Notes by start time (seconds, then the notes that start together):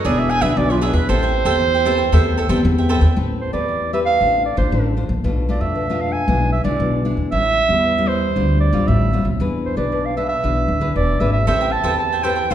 0.05 E1 E3 B3 D4 G#4 B4 D5 E5
0.19 E5
0.29 D4 G#4 B4 E5 G#5
0.41 B1 B3 D4 G#4 B4 E5
0.57 B1 B2 D5
0.70 F4 G#4 B4 E5
0.81 B3 D4 G#4 B4 E5
0.93 E2 G#4 B4 E5
1.09 A1 A3 C4 G4 A4 C5 E5 G5
1.23 C5 E5 G5
1.45 E2 C4 G4 A4 C5 E5 G5
1.60 E3
1.74 C5 E5 G5
1.85 C4 G4 A4 B4 C5 E5 G5
1.97 C5 E5 G5
2.12 E2 A3 C4 G4 A4 B4 C5 E5 G5
2.38 A4 C5 E5 G5
2.49 E2 C4 G4 A4 B4 C5 E5 G5
2.65 E2 E3
2.78 C5 E5 G5
2.89 C4 G4 A4 B4 C5 E5 G5
3.01 E2 C5 E5 G5
3.16 A1 A3 C4 G4 B4
3.41 C5
3.53 E2 C4 G4 B4 D5
3.69 E3
3.93 C4 G4 B4 E5
4.06 F5
4.21 A1 A3 D4 F4 C5
4.46 D5
4.57 A1 D4 F4 C5
4.72 A1 A3
4.97 D4 F4 C5
5.09 A#1
5.24 B1 B2 A3 D4 F4
5.49 A3 D4 F4 D5
5.61 F2 E5
5.75 B2
5.90 A3 D4 F4
6.01 F5
6.12 G#5
6.28 B1 B2 G#3 D4 E4
6.52 E5
6.64 B1 G#3 D4 E4 D5
6.80 B1 B2
7.05 G#3 D4 E4
7.17 E2
7.31 A1 A2 G3 C#4 E4 E5
7.69 E2 G3 C#4 E4
7.84 E3
7.98 G3 C#4 E4
8.08 C5
8.36 D2 D3 G3 C4 F4
8.60 D5
8.72 A1 G3 C4 F4
8.88 A1 A2 E5
9.13 G3 C4 F4
9.25 B1
9.40 E2 E3 D4 G#4 B4
9.65 C5
9.77 B1 D4 G#4 B4 D5
9.92 B2
10.06 F5
10.17 D4 G#4 B4 E5
10.29 E5
10.43 B1 E3 D4 G#4 B4
10.68 D1
10.81 D4 G#4 B4
10.96 E1 B2 D5
11.20 G#1 D4 G#4 B4 E5
11.33 E5
11.47 A1 A3 C4 G4 A4 B4 C5 E5 G5
11.61 C5 E5 G5
11.72 A5
11.84 E2 C4 G4 A4 B4 C5 E5 G5
11.99 E3 A5
12.13 C5 E5 G5
12.23 C4 G4 A4 B4 C5 E5 G5
12.35 C5 E5 G5
12.50 A1 A3 D4 F4 A4 C5 F5